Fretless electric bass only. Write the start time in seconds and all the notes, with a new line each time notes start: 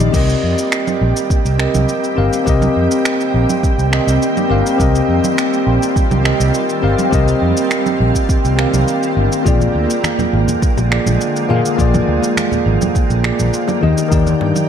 0.14 C2
0.43 F2
1.01 A#1
1.45 C2
1.75 C2
2.18 G1
2.47 C2
2.76 F2
3.34 A#1
3.78 C2
4.07 C2
4.50 G1
4.80 C2
5.09 F2
5.67 A#1
6.11 C2
6.40 C2
6.83 G1
7.12 C2
7.42 F2
8.00 A#1
8.45 C2
8.74 C2
9.17 G1
9.46 A#1
9.75 D2
10.33 G#1
10.77 A#1
11.06 A#1
11.50 A#2
11.79 A#1
12.08 D2
12.66 G#1
13.10 A#1
13.40 A#1
13.83 D#2
14.12 D#2
14.41 G2